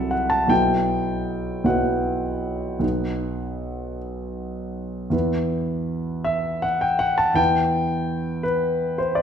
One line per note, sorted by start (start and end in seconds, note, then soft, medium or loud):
0.00 0.53 C2 soft
0.00 0.48 F#3 soft
0.00 0.50 E4 soft
0.00 0.53 A4 soft
0.00 0.12 E5 medium
0.00 0.11 F#5 medium
0.00 0.30 A5 medium
0.11 0.30 F#5 medium
0.30 0.49 A5 medium
0.47 1.62 B1 soft
0.47 1.62 F#3 soft
0.47 1.63 E4 soft
0.47 1.63 B4 soft
0.47 1.66 G5 medium
1.64 2.77 B1 soft
1.64 2.78 F#3 soft
1.64 2.78 E4 soft
1.64 2.79 B4 soft
1.64 3.98 F#5 medium
2.79 5.08 B1 soft
2.79 5.08 B3 soft
2.79 5.09 D#4 soft
2.79 5.09 B4 soft
5.10 7.32 E2 soft
5.10 7.33 B3 soft
5.10 7.34 E4 soft
5.10 7.34 B4 soft
6.25 6.64 E5 medium
6.62 6.82 F#5 medium
6.81 7.01 G5 medium
6.99 7.19 F#5 medium
7.18 7.37 A5 medium
7.34 9.22 E2 soft
7.34 9.22 B3 soft
7.34 9.22 E4 soft
7.34 8.42 B4 soft
7.34 8.45 G5 medium
8.43 8.99 B4 medium
8.98 9.17 C5 medium
9.15 9.22 D5 medium